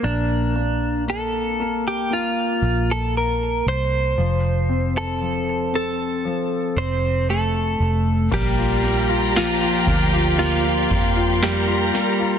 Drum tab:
CC |----------------|----------------|x---------------|
RD |----------------|----------------|x-x-x-xxx-x-x-x-|
SD |----------------|----------------|----o-------o-o-|
BD |----------------|----------------|o-----o---o-----|